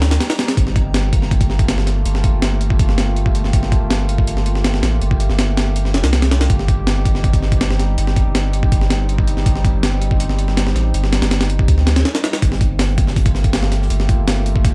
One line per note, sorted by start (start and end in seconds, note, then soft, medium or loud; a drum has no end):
0.00 0.19 D2 medium
0.00 0.53 G3 medium
0.00 0.53 C4 medium
0.00 0.53 D#4 medium
0.00 0.53 G4 medium
0.00 0.58 A#5 medium
0.00 snare loud
0.00 closed hi-hat medium
0.11 snare loud
0.11 closed hi-hat medium
0.20 snare loud
0.20 closed hi-hat medium
0.29 snare loud
0.29 closed hi-hat medium
0.37 snare loud
0.37 closed hi-hat medium
0.39 closed hi-hat medium
0.48 snare loud
0.48 closed hi-hat medium
0.57 2.04 G1 loud
0.57 6.46 A3 medium
0.57 6.46 A#3 medium
0.57 6.46 F4 medium
0.57 12.38 G4 medium
0.57 kick loud
0.57 closed hi-hat medium
0.67 snare soft
0.76 kick loud
0.76 closed hi-hat medium
0.94 snare loud
0.94 closed hi-hat medium
1.13 kick loud
1.13 closed hi-hat medium
1.22 snare soft
1.31 kick medium
1.31 closed hi-hat medium
1.41 kick loud
1.41 closed hi-hat medium
1.50 snare soft
1.59 kick medium
1.59 closed hi-hat medium
1.68 snare loud
1.68 closed hi-hat medium
1.78 snare medium
1.87 snare soft
1.87 closed hi-hat medium
2.05 2.32 G1 loud
2.05 closed hi-hat medium
2.15 snare medium
2.24 kick loud
2.24 closed hi-hat medium
2.33 3.52 G1 medium
2.42 snare loud
2.42 closed hi-hat medium
2.61 closed hi-hat medium
2.70 kick loud
2.79 kick loud
2.79 closed hi-hat medium
2.89 snare soft
2.98 snare loud
2.98 closed hi-hat medium
3.16 closed hi-hat medium
3.26 kick medium
3.35 closed hi-hat medium
3.44 snare soft
3.53 3.80 G1 loud
3.53 kick loud
3.53 closed hi-hat medium
3.63 snare soft
3.72 kick loud
3.72 closed hi-hat medium
3.81 4.82 G1 medium
3.90 snare loud
3.90 closed hi-hat medium
4.09 closed hi-hat medium
4.18 kick medium
4.27 closed hi-hat medium
4.37 snare soft
4.46 closed hi-hat medium
4.55 snare soft
4.64 snare loud
4.64 closed hi-hat medium
4.74 snare medium
4.83 5.00 A1 medium
4.83 snare loud
4.83 closed hi-hat medium
5.01 5.28 G1 loud
5.01 closed hi-hat medium
5.11 kick medium
5.20 closed hi-hat medium
5.29 5.96 G1 medium
5.29 snare soft
5.39 snare loud
5.39 closed hi-hat medium
5.57 snare loud
5.57 closed hi-hat medium
5.76 closed hi-hat medium
5.85 snare soft
5.94 6.03 F1 loud
5.94 snare loud
5.94 closed hi-hat medium
6.04 6.48 C2 medium
6.04 snare loud
6.04 closed hi-hat medium
6.13 snare loud
6.13 closed hi-hat medium
6.22 snare loud
6.22 closed hi-hat medium
6.31 snare loud
6.31 closed hi-hat medium
6.41 snare loud
6.41 closed hi-hat medium
6.50 7.97 G1 loud
6.50 12.38 G3 medium
6.50 12.38 C4 medium
6.50 12.38 D#4 medium
6.50 kick loud
6.50 closed hi-hat medium
6.59 snare soft
6.68 kick medium
6.68 closed hi-hat medium
6.87 snare loud
6.87 closed hi-hat medium
7.05 kick loud
7.05 closed hi-hat medium
7.15 snare soft
7.24 kick medium
7.24 closed hi-hat medium
7.33 kick loud
7.33 closed hi-hat medium
7.43 snare soft
7.52 kick medium
7.52 closed hi-hat medium
7.61 snare loud
7.61 closed hi-hat medium
7.71 snare medium
7.80 snare soft
7.80 closed hi-hat medium
7.98 8.24 G1 loud
7.98 closed hi-hat loud
8.07 snare soft
8.16 kick loud
8.16 closed hi-hat medium
8.26 9.45 G1 medium
8.35 snare loud
8.35 closed hi-hat medium
8.53 closed hi-hat medium
8.63 kick medium
8.72 kick loud
8.72 closed hi-hat loud
8.81 snare soft
8.90 snare loud
8.90 closed hi-hat medium
9.09 closed hi-hat medium
9.18 kick medium
9.28 closed hi-hat medium
9.37 snare soft
9.46 9.73 G1 loud
9.46 kick loud
9.46 closed hi-hat medium
9.56 snare soft
9.65 kick loud
9.65 closed hi-hat medium
9.74 10.74 G1 medium
9.83 snare loud
9.83 closed hi-hat medium
10.02 closed hi-hat medium
10.11 kick loud
10.20 closed hi-hat medium
10.29 snare soft
10.39 closed hi-hat medium
10.48 snare soft
10.57 snare loud
10.57 closed hi-hat medium
10.67 snare medium
10.75 10.92 A1 medium
10.75 snare soft
10.75 closed hi-hat medium
10.94 11.21 G1 loud
10.94 closed hi-hat loud
11.04 snare medium
11.13 snare loud
11.13 closed hi-hat medium
11.22 11.67 G1 medium
11.22 snare loud
11.22 closed hi-hat medium
11.31 snare loud
11.31 closed hi-hat medium
11.41 snare loud
11.41 closed hi-hat medium
11.50 closed hi-hat medium
11.59 kick loud
11.68 12.04 D2 medium
11.68 kick loud
11.68 closed hi-hat loud
11.78 snare soft
11.87 snare loud
11.87 closed hi-hat medium
11.96 snare loud
11.96 closed hi-hat medium
12.05 snare loud
12.05 closed hi-hat medium
12.15 snare loud
12.15 closed hi-hat medium
12.24 snare loud
12.24 closed hi-hat medium
12.33 snare loud
12.33 closed hi-hat medium
12.42 13.89 G1 loud
12.42 14.74 A3 medium
12.42 14.74 A#3 medium
12.42 14.74 F4 medium
12.42 14.74 G4 loud
12.42 kick loud
12.42 closed hi-hat loud
12.42 closed hi-hat medium
12.52 snare soft
12.52 snare medium
12.61 kick loud
12.61 closed hi-hat medium
12.79 snare loud
12.79 closed hi-hat medium
12.79 closed hi-hat loud
12.89 closed hi-hat soft
12.98 kick loud
12.98 closed hi-hat medium
13.07 snare soft
13.07 snare medium
13.16 kick medium
13.16 closed hi-hat medium
13.16 closed hi-hat loud
13.26 kick loud
13.26 closed hi-hat medium
13.35 snare soft
13.35 closed hi-hat medium
13.44 kick medium
13.44 closed hi-hat medium
13.53 snare loud
13.53 closed hi-hat medium
13.63 snare medium
13.72 snare soft
13.72 closed hi-hat medium
13.82 snare medium
13.90 14.17 G1 loud
13.90 closed hi-hat medium
14.00 snare soft
14.09 kick medium
14.09 closed hi-hat medium
14.18 14.74 G1 medium
14.27 snare loud
14.27 closed hi-hat loud
14.27 closed hi-hat medium
14.46 closed hi-hat medium
14.56 kick medium
14.65 kick loud
14.65 closed hi-hat medium